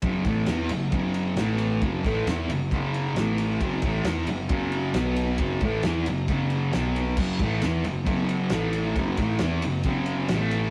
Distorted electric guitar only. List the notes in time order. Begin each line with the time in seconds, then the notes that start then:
0.03 F#2 C#3 F#3
0.26 A2 E3 A3
0.48 E3 B3 E4
0.71 F#2 C#3
0.92 F#2 C#3 F#3
1.37 A2 E3 A3
1.83 F#2 C#3 F#3
2.05 A2 E3 A3
2.28 E3 B3 E4
2.51 F#2 C#3
2.73 F#2 C#3 F#3
3.18 A2 E3 A3
3.62 F#2 C#3 F#3
3.84 A2 E3 A3
4.07 E3 B3 E4
4.28 F#2 C#3
4.49 F#2 C#3 F#3
4.95 B2 F#3 B3
5.40 F#2 C#3 F#3
5.63 A2 E3 A3
5.85 E3 B3 E4
6.08 F#2 C#3
6.29 F#2 C#3 F#3
6.73 B2 F#3 B3
7.18 F#2 C#3 F#3
7.41 A2 E3 A3
7.63 E3 B3 E4
7.85 F#2 C#3
8.05 F#2 C#3 F#3
8.52 A2 E3 A3
8.96 F#2 C#3 F#3
9.19 A2 E3 A3
9.41 E3 B3 E4
9.65 F#2 C#3
9.85 F#2 C#3 F#3
10.31 A2 E3 A3